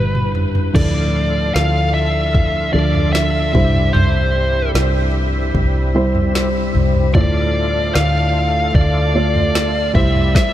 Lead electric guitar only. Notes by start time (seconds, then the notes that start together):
Already playing: B4
0.75 D5
1.54 F5
1.94 E5
2.73 D5
3.13 E5
3.93 C5
7.15 D5
7.95 F5
8.75 D5
9.95 E5
10.36 E5